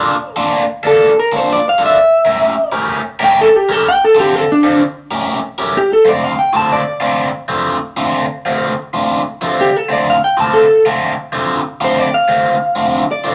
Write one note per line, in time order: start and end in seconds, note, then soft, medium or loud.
0.00 0.15 A#3 medium
0.00 0.15 D4 medium
0.00 0.14 F4 medium
0.00 0.14 A4 medium
0.00 0.34 D5 loud
0.36 0.63 A#3 medium
0.36 0.63 D4 medium
0.36 0.62 F4 medium
0.36 0.62 A4 medium
0.83 1.10 A#3 medium
0.83 1.10 D4 medium
0.83 1.10 F4 medium
0.83 1.10 A4 medium
0.83 1.17 A4 medium
1.20 1.36 A#4 medium
1.32 1.58 A#3 medium
1.32 1.58 D4 medium
1.32 1.58 F4 medium
1.32 1.58 A4 medium
1.36 1.50 C5 medium
1.53 1.66 D5 loud
1.69 1.82 F5 loud
1.78 1.96 A#3 medium
1.78 1.96 D4 medium
1.78 1.96 F4 medium
1.78 1.95 A4 medium
1.86 2.75 E5 loud
2.25 2.53 A3 medium
2.25 2.52 C#4 medium
2.25 2.52 G4 medium
2.25 2.52 A#4 loud
2.72 2.99 A3 medium
2.72 2.99 C#4 medium
2.72 2.99 G4 medium
2.72 2.99 A#4 medium
3.19 3.47 A3 medium
3.19 3.47 C#4 medium
3.19 3.47 G4 medium
3.19 3.46 A#4 medium
3.24 3.39 G5 loud
3.41 3.56 A4 loud
3.56 3.71 G4 medium
3.69 3.86 A3 medium
3.69 3.86 C#4 medium
3.69 3.86 G4 medium
3.69 3.86 A4 medium
3.69 3.86 A#4 medium
3.88 4.03 G5 loud
4.04 4.19 A4 medium
4.15 4.43 D3 medium
4.15 4.43 C4 medium
4.15 4.42 F4 medium
4.15 4.42 A4 loud
4.20 4.35 G4 medium
4.35 4.50 A4 medium
4.52 4.81 D4 medium
4.63 4.81 D3 medium
4.63 4.81 C4 medium
4.63 4.81 F4 medium
4.63 4.81 A4 medium
5.11 5.38 A3 medium
5.11 5.38 C#4 medium
5.11 5.38 G4 medium
5.11 5.37 A#4 medium
5.58 5.76 A3 medium
5.58 5.76 C#4 medium
5.58 5.76 G4 medium
5.58 5.76 A#4 medium
5.77 5.92 G4 medium
5.93 6.08 A4 medium
6.05 6.33 D3 medium
6.05 6.33 A3 medium
6.05 6.32 C4 medium
6.05 6.32 F4 medium
6.05 6.24 D5 medium
6.24 6.39 F5 medium
6.39 6.55 G5 medium
6.53 6.81 D3 medium
6.53 6.81 A3 medium
6.53 6.80 C4 medium
6.53 6.80 F4 medium
6.53 6.72 A5 medium
6.73 7.02 D5 medium
7.00 7.28 D3 medium
7.00 7.28 A3 medium
7.00 7.28 C4 medium
7.00 7.28 F4 medium
7.48 7.76 D3 medium
7.48 7.76 A3 medium
7.48 7.76 C4 medium
7.48 7.76 F4 medium
7.97 8.24 D3 medium
7.97 8.24 A3 medium
7.97 8.24 C4 medium
7.97 8.24 F4 medium
8.46 8.72 D3 medium
8.46 8.72 A3 medium
8.46 8.72 C4 medium
8.46 8.72 F4 medium
8.94 9.21 D3 medium
8.94 9.20 A3 medium
8.94 9.20 C4 medium
8.94 9.20 F4 medium
9.41 9.68 D3 medium
9.41 9.68 A3 medium
9.41 9.68 C4 medium
9.41 9.68 F4 medium
9.61 9.76 G4 medium
9.76 9.91 A4 medium
9.89 10.16 D3 medium
9.89 10.16 A3 medium
9.89 10.16 C4 medium
9.89 10.15 F4 medium
9.93 10.07 D5 medium
10.10 10.24 F5 medium
10.24 10.39 G5 medium
10.37 10.64 D3 medium
10.37 10.64 A3 medium
10.37 10.64 C4 medium
10.37 10.63 F4 medium
10.37 10.55 A5 medium
10.53 10.84 A4 medium
10.85 11.12 D3 medium
10.85 11.12 A3 medium
10.85 11.12 C4 medium
10.85 11.12 F4 medium
11.32 11.59 D3 medium
11.32 11.59 A3 medium
11.32 11.59 C4 medium
11.32 11.59 F4 medium
11.81 12.08 D3 medium
11.81 12.07 A3 medium
11.81 12.07 C4 medium
11.81 12.07 F4 medium
11.81 11.99 C5 medium
11.99 12.14 D5 medium
12.14 13.07 F5 medium
12.28 12.55 D3 medium
12.28 12.55 A3 medium
12.28 12.55 C4 medium
12.28 12.55 F4 medium
12.76 13.03 D3 medium
12.76 13.03 A3 medium
12.76 13.02 C4 medium
12.76 13.03 F4 medium
13.12 13.28 D5 medium
13.24 13.35 D3 medium
13.24 13.35 A3 medium
13.24 13.35 C4 medium
13.24 13.35 F4 medium
13.24 13.35 C5 medium